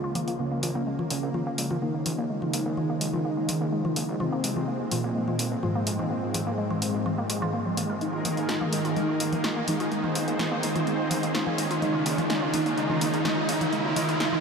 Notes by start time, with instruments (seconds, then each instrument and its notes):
Already playing: analog synth pad C#2 C#3 F3 G#3, analog synth lead F4
0.04 synth pluck F4
0.15 synth pluck A#3, closed hi-hat, mid tom
0.28 synth pluck A#3, closed hi-hat
0.39 analog synth pad C#3 F3 A#3, analog polysynth C#3, synth pluck A#3, analog synth lead C#4, riser
0.51 synth pluck A#3
0.63 analog synth bass A#1, synth pluck F4, open hi-hat, mid tom
0.75 analog synth bass A#1, synth pluck A#3
0.87 synth pluck G#3
0.99 synth pluck F4, mid tom
1.10 analog synth bass A#1, analog polysynth C#3, synth pluck A#3, analog synth lead C#4, open hi-hat
1.23 analog synth bass A#1, synth pluck A#3
1.34 synth pluck F4, mid tom
1.47 synth pluck A#3
1.58 analog synth bass A#1, synth pluck G#3, open hi-hat
1.71 analog synth bass A#1, synth pluck F4, mid tom
1.82 analog polysynth D#3, synth pluck A#3, analog synth lead D#4
1.94 synth pluck A#3
2.06 analog synth bass A#1, synth pluck F4, open hi-hat, mid tom
2.18 analog synth bass A#1, synth pluck A#3
2.30 analog synth pad G#3, synth pluck G#3
2.42 synth pluck F4, mid tom
2.53 analog synth bass A#1, synth pluck A#3, open hi-hat
2.66 analog synth bass A#1, synth pluck A#3
2.77 synth pluck F4, mid tom
2.90 synth pluck A#3
3.01 analog synth bass A#1, synth pluck G#3, open hi-hat
3.13 analog synth bass A#1, synth pluck F4, mid tom
3.25 synth pluck A#3
3.37 synth pluck A#3
3.49 analog synth bass A#1, synth pluck F4, open hi-hat, mid tom
3.61 analog synth bass A#1, synth pluck A#3
3.73 synth pluck G#3
3.85 synth pluck F4, mid tom
3.96 analog synth bass A#1, synth pluck A#3, open hi-hat
4.09 analog synth bass A#1, synth pluck A#3
4.20 analog polysynth C3, analog synth pad G#3 C4, analog synth lead C4, synth pluck F4, mid tom
4.33 synth pluck A#3
4.44 analog synth bass F1, synth pluck G#3, open hi-hat
4.56 analog synth bass F1, synth pluck F4, mid tom
4.68 synth pluck A#3
4.80 synth pluck A#3
4.91 analog synth bass F1, analog polysynth A#2, analog synth lead A#3, synth pluck F4, open hi-hat, mid tom
5.04 analog synth bass F1, synth pluck A#3
5.16 synth pluck G#3
5.28 synth pluck F4, mid tom
5.39 analog synth bass F1, synth pluck A#3, open hi-hat
5.52 analog synth bass F1, synth pluck A#3
5.63 analog polysynth G#2, analog synth lead G#3, synth pluck F4, mid tom
5.75 synth pluck A#3
5.87 analog synth bass F1, synth pluck G#3, open hi-hat
5.99 analog synth bass F1, synth pluck F4, mid tom
6.11 synth pluck A#3
6.23 synth pluck A#3
6.34 analog synth bass F1, synth pluck F4, open hi-hat, mid tom
6.47 analog synth bass F1, synth pluck A#3
6.58 synth pluck G#3
6.71 synth pluck F4, mid tom
6.82 analog synth bass F1, synth pluck A#3, open hi-hat
6.94 analog synth bass F1, synth pluck A#3
7.06 synth pluck F4, mid tom
7.18 synth pluck A#3
7.30 analog synth bass F1, synth pluck F4, open hi-hat
7.42 analog synth bass F1, synth pluck F4, mid tom
7.54 synth pluck A#3
7.66 synth pluck F3
7.77 analog synth bass F1, synth pluck A#3, open hi-hat, mid tom
7.90 analog synth bass F1, synth pluck A#4
8.01 analog polysynth D#3, analog synth pad D#3 D#4 G#4 A#4, synth pluck G#3, analog synth lead D#4, closed hi-hat
8.14 synth pluck F4
8.25 synth pluck A#3, open hi-hat, mid tom
8.37 synth pluck A#3, closed hi-hat
8.49 synth pluck F4, snare, closed hi-hat
8.61 synth pluck A#3, mid tom
8.72 analog synth bass D#1, analog polysynth D#3, synth pluck G#3, analog synth lead D#4, open hi-hat
8.85 analog synth bass D#1, synth pluck F4, closed hi-hat
8.96 analog polysynth D#3, synth pluck G#3, analog synth lead D#4, closed hi-hat, mid tom
9.09 synth pluck F4
9.20 synth pluck A#3, open hi-hat
9.33 synth pluck A#3, closed hi-hat, mid tom
9.44 synth pluck F4, snare, closed hi-hat
9.56 synth pluck A#3
9.68 analog polysynth D#3, synth pluck G#3, analog synth lead D#4, open hi-hat, mid tom
9.80 synth pluck F4, closed hi-hat
9.91 analog polysynth D#3, synth pluck G#3, analog synth lead D#4, analog synth pad C5, closed hi-hat
10.04 synth pluck F4, mid tom
10.15 analog synth bass D#1, synth pluck A#3, open hi-hat
10.28 analog synth bass D#1, synth pluck A#3, closed hi-hat
10.39 synth pluck F4, snare, closed hi-hat, mid tom
10.52 synth pluck A#3
10.63 analog synth bass D#1, analog polysynth D#3, synth pluck G#3, analog synth lead D#4, open hi-hat
10.76 synth pluck F4, closed hi-hat, mid tom
10.87 analog polysynth D#3, synth pluck G#3, analog synth lead D#4, closed hi-hat
10.99 synth pluck F4
11.11 synth pluck A#3, open hi-hat, mid tom
11.23 synth pluck A#3, closed hi-hat
11.34 synth pluck F4, snare, closed hi-hat
11.47 synth pluck A#3, mid tom
11.58 analog polysynth D#3, synth pluck G#3, analog synth lead D#4, open hi-hat
11.71 synth pluck F4, closed hi-hat
11.82 analog synth pad C#3 C#4 F4, analog polysynth D#3, synth pluck G#3, analog synth lead D#4, closed hi-hat, mid tom
11.94 synth pluck F4
12.06 analog synth bass C#2, synth pluck A#3, open hi-hat
12.18 analog synth bass C#2, synth pluck A#3, closed hi-hat, mid tom
12.30 analog polysynth D#3, synth pluck G#3, analog synth lead D#4, snare, closed hi-hat
12.42 synth pluck F4
12.53 analog synth bass C#2, synth pluck A#3, open hi-hat, mid tom
12.66 analog synth bass C#2, synth pluck A#3, closed hi-hat
12.77 analog polysynth D#3, synth pluck G#3, analog synth lead D#4, closed hi-hat
12.90 synth pluck F4, mid tom
13.01 analog synth bass C#2, synth pluck A#3, open hi-hat
13.13 analog synth bass C#2, synth pluck A#3, closed hi-hat
13.25 analog polysynth D#3, synth pluck G#3, analog synth lead D#4, snare, closed hi-hat, mid tom
13.37 synth pluck F4
13.49 analog synth bass C#2, synth pluck A#3, open hi-hat
13.61 analog synth bass C#2, synth pluck A#3, closed hi-hat, mid tom
13.72 analog polysynth D#3, synth pluck G#3, analog synth lead D#4, analog synth pad A#4, closed hi-hat
13.85 synth pluck F4
13.96 analog synth bass C#2, analog polysynth D#3, synth pluck G#3, analog synth lead D#4, open hi-hat, mid tom
14.09 analog synth bass C#2, synth pluck F4, closed hi-hat
14.20 analog polysynth D#3, synth pluck G#3, analog synth lead D#4, snare, closed hi-hat
14.33 synth pluck F4, mid tom